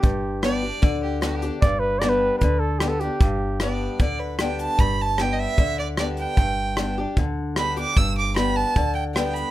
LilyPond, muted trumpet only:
\new Staff \with { instrumentName = "Muted trumpet" } { \time 4/4 \key g \major \tempo 4 = 151 g'4 r2. | d''8 b'8 d''16 b'8. b'8 a'8 g'16 a'16 g'8~ | g'4 r2. | r1 |
r1 | r1 | }